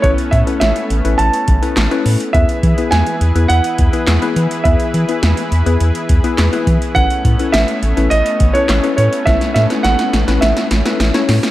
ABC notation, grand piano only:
X:1
M:4/4
L:1/16
Q:1/4=104
K:Alyd
V:1 name="Grand piano"
c2 e2 e4 a6 z2 | e4 g4 f8 | e12 z4 | f4 e4 d3 c3 c2 |
e2 e2 f4 e6 z2 |]